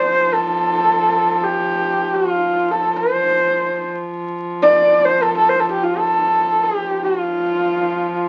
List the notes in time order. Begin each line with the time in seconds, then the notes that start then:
Already playing: F3 C5
0.33 A4
1.43 G4
2.14 F4
2.71 A4
2.96 C5
3.12 F3
4.62 D5
5.05 C5
5.23 A4
5.37 A4
5.49 C5
5.59 A4
5.71 G4
5.83 F4
5.98 A4
6.63 G4
6.78 F3
7.04 F4